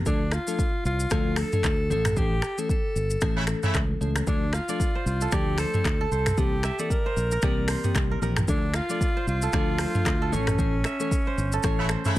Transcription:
0.06 fingered electric bass D2, fm electric piano F3 A3 D4 A4, alto saxophone D4, kick, shaker
0.31 alto saxophone F4, finger snap, cross-stick, shaker
0.47 fm electric piano F3 A3 D4 A4, shaker
0.59 kick, shaker
0.85 fingered electric bass C2, alto saxophone F4, shaker
1.00 shaker
1.10 fingered electric bass D2, fm electric piano F3 A3 D4 A4, finger snap, kick, cross-stick, shaker
1.36 alto saxophone A4, finger snap, cross-stick, open hi-hat, shaker
1.52 fm electric piano F3 A3 D4 A4, mid tom, shaker
1.64 fingered electric bass D2, finger snap, kick, cross-stick, clap, shaker
1.90 fingered electric bass A1, fm electric piano E3 A3 C#4 A4, alto saxophone A4, shaker
2.05 finger snap, cross-stick, mid tom, shaker
2.16 fm electric piano E3 A3 C#4 A4, alto saxophone G4, kick, shaker
2.42 finger snap, cross-stick, shaker
2.58 fm electric piano E3 A3 C#4 A4, alto saxophone A4, shaker
2.69 alto saxophone A4, kick, shaker
2.96 fingered electric bass G1, shaker
3.10 shaker
3.21 fingered electric bass A1, fm electric piano E3 A3 C#4 A4, finger snap, kick, cross-stick, shaker
3.37 horn section C#3 A3 E4
3.47 finger snap, cross-stick, shaker
3.63 horn section C#3 A3 E4, fm electric piano E3 A3 C#4 A4, mid tom, shaker
3.74 fingered electric bass C#2, finger snap, kick, cross-stick, clap, shaker
4.01 fingered electric bass C#2, fm electric piano E3 A3 C#4 A4, shaker
4.16 finger snap, cross-stick, shaker
4.27 fingered electric bass D2, fm electric piano F3 A3 D4 A4, alto saxophone D4, kick, shaker
4.53 alto saxophone F4, kora F5, finger snap, cross-stick, shaker
4.68 fm electric piano F3 A3 D4 A4, kora D5, shaker
4.80 kick, shaker
4.95 kora C5
5.06 fingered electric bass C2, alto saxophone F4, shaker
5.21 kora A4, shaker
5.32 fingered electric bass D2, fm electric piano F3 A3 D4 A4, alto saxophone G4, kora D5, finger snap, kick, cross-stick, shaker
5.58 alto saxophone A4, kora C5, finger snap, cross-stick, open hi-hat, shaker
5.74 fm electric piano F3 A3 D4 A4, mid tom, shaker
5.85 fingered electric bass D2, finger snap, kick, cross-stick, clap, shaker
6.01 kora A4
6.11 fingered electric bass C2, alto saxophone A4, kora C5, shaker
6.26 finger snap, cross-stick, mid tom, shaker
6.37 fingered electric bass C2, fm electric piano E3 A#3 C4 G4, alto saxophone G4, kick, shaker
6.63 kora E5, finger snap, cross-stick, shaker
6.79 fm electric piano E3 A#3 C4 G4, alto saxophone A4, kora D5, shaker
6.90 alto saxophone A#4, kick, shaker
7.06 kora C5
7.17 fingered electric bass A#1, shaker
7.31 kora A#4, shaker
7.42 fingered electric bass C2, fm electric piano E3 A#3 C4 G4, kora D5, finger snap, kick, cross-stick, shaker
7.68 kora C5, finger snap, cross-stick, open hi-hat, shaker
7.84 fm electric piano E3 A#3 C4 G4, mid tom, shaker
7.95 fingered electric bass C2, finger snap, kick, cross-stick, clap, shaker
8.11 kora A#4
8.21 fingered electric bass A#1, fm electric piano E3 A#3 C4 G4, kora A#4, shaker
8.36 finger snap, cross-stick, mid tom, shaker
8.48 fingered electric bass D2, fm electric piano F3 A3 D4 A4, alto saxophone D4, kick, shaker
8.74 alto saxophone F4, kora F5, finger snap, cross-stick, shaker
8.89 fm electric piano F3 A3 D4 A4, kora D5, shaker
9.01 kick, shaker
9.17 kora C5
9.27 fingered electric bass C2, alto saxophone F4, shaker
9.42 kora A4, shaker
9.53 fingered electric bass D2, fm electric piano F3 A3 D4 A4, kora D5, finger snap, kick, cross-stick, shaker
9.78 kora C5, finger snap, cross-stick, open hi-hat, shaker
9.95 fm electric piano F3 A3 D4 A4, mid tom, shaker
10.06 fingered electric bass D2, finger snap, kick, cross-stick, clap, shaker
10.22 kora A4
10.32 fingered electric bass A1, fm electric piano E3 A3 C#4 A4, alto saxophone C#4, kora C#5, shaker
10.47 finger snap, cross-stick, mid tom, shaker
10.58 fm electric piano E3 A3 C#4 A4, kick, shaker
10.84 kora E5, finger snap, cross-stick, shaker
11.00 fm electric piano E3 A3 C#4 A4, kora C#5, shaker
11.11 kick, shaker
11.27 kora C5
11.38 fingered electric bass G1, shaker
11.52 kora A4, shaker
11.63 fingered electric bass A1, fm electric piano E3 A3 C#4 A4, kora C#5, finger snap, kick, cross-stick, shaker
11.79 horn section C#3 A3 E4
11.89 kora C5, finger snap, cross-stick, shaker
12.05 horn section C#3 A3 E4, fm electric piano E3 A3 C#4 A4, mid tom, shaker

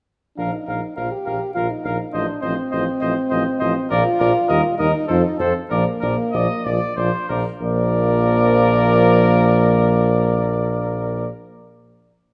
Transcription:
0.36 tuba A#1, euphonium F3, french horn D4, trumpet A#4, cornet F5
0.52 french horn D#4
0.67 tuba A#1, euphonium F3, trumpet A#4, cornet F5
0.96 tuba A#1, euphonium F3, french horn F4, trumpet A#4, cornet F5
1.11 french horn G4
1.25 tuba A#1, euphonium F3, trumpet A#4, cornet F5
1.54 tuba A#1, euphonium F3, french horn F4, trumpet A#4, cornet F5
1.70 french horn D#4
1.83 tuba A#1, euphonium F3, trumpet A#4, cornet F5
2.13 tuba A1, euphonium F3, french horn D4, trumpet C5, cornet D#5
2.41 tuba A1, euphonium F3, french horn C4, trumpet C5, cornet D#5
2.70 tuba A1, euphonium F3, trumpet C5, cornet D#5
3.00 tuba A1, euphonium F3, trumpet C5, cornet D#5
3.30 tuba A1, euphonium F3, trumpet C5, cornet D#5
3.59 tuba A1, euphonium F3, trumpet C5, cornet D#5
3.89 tuba A#1, euphonium F3, french horn F4, trumpet A#4, cornet D5
4.19 tuba A#1, euphonium F3, trumpet A#4, cornet D5
4.48 tuba D#2, euphonium G3, trumpet A#4, cornet D#5
4.78 tuba D#2, euphonium G3, french horn D#4, trumpet A#4, cornet D#5
5.07 tuba F2, euphonium F3, french horn D#4, trumpet A4, cornet C5
5.38 tuba F2, euphonium F3, french horn C4, trumpet A4, cornet C5
5.69 tuba A#1, euphonium F3, french horn A#3, trumpet A#4, cornet D5
6.00 tuba A#1, euphonium F3, trumpet A#4, cornet D5
6.31 tuba A#1, euphonium F3, cornet D5, trumpet D#5
6.64 tuba A#1, euphonium F3, trumpet D5, cornet D5
6.96 tuba A#1, euphonium F3, trumpet C5, cornet D5
7.29 tuba A#1, euphonium F3, trumpet A#4, cornet D5
7.60 tuba A#1, euphonium F3, french horn A#3, trumpet A#4, cornet D5

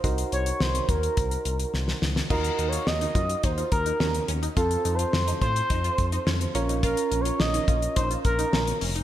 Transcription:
0.04 analog synth bass C2, synth keys D#4 F#4 A#4 C5, kick, closed hi-hat
0.18 closed hi-hat
0.32 analog synth bass C2, analog synth lead C#5, closed hi-hat
0.46 closed hi-hat
0.60 analog synth bass C2, analog synth lead C5, snare
0.75 closed hi-hat
0.89 analog synth bass D#2, analog synth lead A#4, kick, closed hi-hat
1.03 closed hi-hat
1.17 analog synth bass C2, kick, closed hi-hat
1.31 closed hi-hat
1.45 analog synth bass C2, closed hi-hat
1.59 closed hi-hat
1.74 analog synth bass C2, snare
1.88 snare
2.02 analog synth bass C#2, snare
2.16 snare
2.30 analog synth bass D#2, synth keys D#4 F#4 A#4 D#5, synth pluck F4, analog synth lead A#4, kick, crash
2.44 closed hi-hat
2.59 analog synth bass D#2, synth pluck D#4, closed hi-hat
2.68 analog synth lead C#5
2.73 synth pluck F4, closed hi-hat
2.87 analog synth bass D#2, analog synth lead D#5, snare
3.01 synth pluck D#4, closed hi-hat
3.15 analog synth bass F#2, synth pluck F4, kick, closed hi-hat
3.29 closed hi-hat
3.43 analog synth bass D#2, synth pluck D#4, analog synth lead C5, kick, closed hi-hat
3.58 synth pluck F4, closed hi-hat
3.72 analog synth bass D#2, analog synth lead A#4, kick, closed hi-hat
3.86 synth pluck D#4, closed hi-hat
4.00 analog synth bass D#2, synth pluck C#4, snare
4.14 closed hi-hat
4.28 analog synth bass D#2, synth pluck C#4, closed hi-hat
4.42 synth pluck D#4, closed hi-hat
4.57 analog synth bass F2, synth keys C4 F4 A4 C5, synth pluck F4, analog synth lead A4, kick, closed hi-hat
4.71 closed hi-hat
4.85 analog synth bass F2, synth pluck D#4, closed hi-hat
4.95 analog synth lead C5
4.99 synth pluck F4, closed hi-hat
5.13 analog synth bass F2, snare
5.28 synth pluck D#4, closed hi-hat
5.42 analog synth bass A2, synth pluck F4, analog synth lead C5, kick, closed hi-hat
5.56 closed hi-hat
5.70 analog synth bass F2, synth pluck D#4, kick, closed hi-hat
5.84 synth pluck F4, closed hi-hat
5.98 analog synth bass F2, kick, closed hi-hat
6.12 synth pluck D#4, closed hi-hat
6.26 analog synth bass F2, synth pluck C#4, snare
6.41 closed hi-hat
6.55 analog synth bass A#1, synth keys C#4 F4 A#4 C#5, synth pluck C#4, closed hi-hat
6.69 synth pluck D#4, closed hi-hat
6.83 synth pluck F4, analog synth lead A#4, kick, closed hi-hat
6.97 closed hi-hat
7.11 analog synth bass A#1, synth pluck C#4, closed hi-hat
7.21 analog synth lead C#5
7.25 synth pluck F4, closed hi-hat
7.40 analog synth bass A#1, analog synth lead D#5, snare
7.54 synth pluck D#4, closed hi-hat
7.68 analog synth bass A#1, synth pluck F4, kick, closed hi-hat
7.82 closed hi-hat
7.96 analog synth bass A#1, synth pluck D#4, analog synth lead C5, kick, closed hi-hat
8.11 synth pluck F4, closed hi-hat
8.25 analog synth bass A#1, analog synth lead A#4, kick, closed hi-hat
8.39 synth pluck D#4, closed hi-hat
8.53 analog synth bass A#1, synth pluck C#4, snare
8.67 closed hi-hat
8.81 analog synth bass F1, synth pluck C#4, open hi-hat
8.95 synth pluck D#4, closed hi-hat

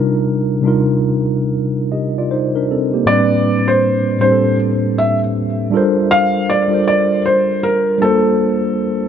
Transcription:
Already playing: tine electric piano C3 G3 D4 D#4 F4 A#4
0.61 tine electric piano C3 G3 D4 D#4
0.66 tine electric piano F4 A#4
1.92 tine electric piano G4 D#5
2.18 tine electric piano F4 D5
2.31 tine electric piano D#4 C5
2.56 tine electric piano D4 A#4
2.71 tine electric piano C4 A4
2.94 tine electric piano A#3 G4
3.05 tine electric piano A2 G3 C4, felt piano D5
3.11 tine electric piano D4 B4
3.68 felt piano C5
4.19 tine electric piano A2 G3 C4, felt piano C5
4.24 tine electric piano D4 G4
4.32 tine electric piano A4
4.98 felt piano E5
5.71 tine electric piano G3 D4 F4 A4
5.76 tine electric piano A#4 C5
6.11 felt piano F5
6.50 felt piano D5
6.68 tine electric piano G3 D4 F4 A4
6.73 tine electric piano A#4 C5
6.88 felt piano D5
7.26 felt piano C5
7.63 felt piano A#4
7.98 tine electric piano G3 D4 F4 A4, felt piano A4
8.03 tine electric piano A#3 C5

